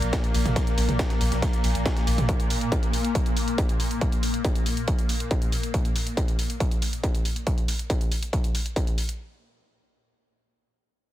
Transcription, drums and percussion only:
0.02 closed hi-hat medium
0.13 kick loud
0.13 snare loud
0.13 closed hi-hat medium
0.13 ride medium
0.24 closed hi-hat medium
0.34 open hi-hat loud
0.34 ride medium
0.45 closed hi-hat medium
0.45 mid tom medium
0.45 ride soft
0.56 kick loud
0.56 closed hi-hat medium
0.56 ride medium
0.67 closed hi-hat medium
0.78 snare soft
0.78 open hi-hat loud
0.78 ride medium
0.89 closed hi-hat soft
0.89 mid tom medium
0.99 kick loud
0.99 snare loud
0.99 closed hi-hat medium
0.99 ride medium
1.10 snare soft
1.10 closed hi-hat medium
1.21 open hi-hat loud
1.21 ride medium
1.32 snare soft
1.32 closed hi-hat medium
1.42 kick loud
1.42 closed hi-hat medium
1.42 ride medium
1.53 closed hi-hat medium
1.64 open hi-hat loud
1.64 ride medium
1.75 closed hi-hat medium
1.86 kick loud
1.86 snare loud
1.86 closed hi-hat medium
1.86 ride medium
1.97 snare soft
1.97 closed hi-hat soft
2.07 open hi-hat loud
2.07 ride medium
2.18 closed hi-hat soft
2.18 mid tom medium
2.18 ride soft
2.29 kick loud
2.29 closed hi-hat medium
2.40 closed hi-hat soft
2.50 open hi-hat loud
2.61 closed hi-hat soft
2.72 kick loud
2.72 closed hi-hat medium
2.83 closed hi-hat soft
2.93 open hi-hat loud
3.04 closed hi-hat medium
3.15 kick loud
3.15 closed hi-hat medium
3.26 closed hi-hat medium
3.37 open hi-hat loud
3.48 closed hi-hat soft
3.58 kick loud
3.58 closed hi-hat medium
3.69 closed hi-hat soft
3.80 open hi-hat loud
3.91 closed hi-hat soft
4.01 kick loud
4.01 closed hi-hat medium
4.12 closed hi-hat soft
4.23 open hi-hat loud
4.34 closed hi-hat soft
4.45 kick loud
4.45 closed hi-hat medium
4.55 closed hi-hat soft
4.66 open hi-hat loud
4.77 closed hi-hat soft
4.88 kick loud
4.88 closed hi-hat medium
4.99 closed hi-hat soft
5.09 open hi-hat loud
5.20 closed hi-hat medium
5.31 kick loud
5.31 closed hi-hat medium
5.42 closed hi-hat soft
5.52 open hi-hat loud
5.63 closed hi-hat soft
5.74 kick loud
5.74 closed hi-hat medium
5.85 closed hi-hat soft
5.96 open hi-hat loud
6.07 closed hi-hat medium
6.17 kick loud
6.17 closed hi-hat medium
6.28 closed hi-hat medium
6.39 open hi-hat loud
6.50 closed hi-hat soft
6.60 kick loud
6.60 closed hi-hat medium
6.71 closed hi-hat medium
6.82 open hi-hat medium
6.93 closed hi-hat soft
7.04 kick loud
7.04 closed hi-hat medium
7.15 closed hi-hat medium
7.25 open hi-hat medium
7.36 closed hi-hat soft
7.47 kick loud
7.47 closed hi-hat medium
7.58 closed hi-hat soft
7.68 open hi-hat loud
7.79 closed hi-hat medium
7.90 kick loud
7.90 closed hi-hat medium
8.01 closed hi-hat medium
8.12 open hi-hat loud
8.22 closed hi-hat medium
8.33 kick loud
8.33 closed hi-hat medium
8.44 closed hi-hat medium
8.55 open hi-hat medium
8.66 closed hi-hat soft
8.76 kick loud
8.76 closed hi-hat medium
8.87 closed hi-hat medium
8.98 open hi-hat medium
9.09 closed hi-hat medium

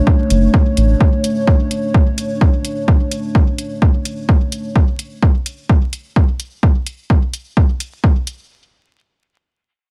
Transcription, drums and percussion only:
0.07 kick loud
0.30 closed hi-hat medium
0.54 kick loud
0.77 closed hi-hat medium
1.01 kick loud
1.24 closed hi-hat medium
1.47 kick loud
1.71 closed hi-hat medium
1.94 kick loud
2.18 closed hi-hat medium
2.41 kick loud
2.65 closed hi-hat medium
2.88 kick loud
3.12 closed hi-hat medium
3.35 kick loud
3.58 closed hi-hat medium
3.82 kick loud
4.05 closed hi-hat medium
4.29 kick loud
4.52 closed hi-hat medium
4.76 kick loud
4.99 closed hi-hat medium
5.22 kick loud
5.46 closed hi-hat medium
5.69 kick loud
5.93 closed hi-hat medium
6.16 kick loud
6.40 closed hi-hat medium
6.63 kick loud
6.87 closed hi-hat medium
7.10 kick medium
7.33 closed hi-hat medium
7.57 kick loud
7.80 closed hi-hat medium
8.04 kick loud
8.27 closed hi-hat medium

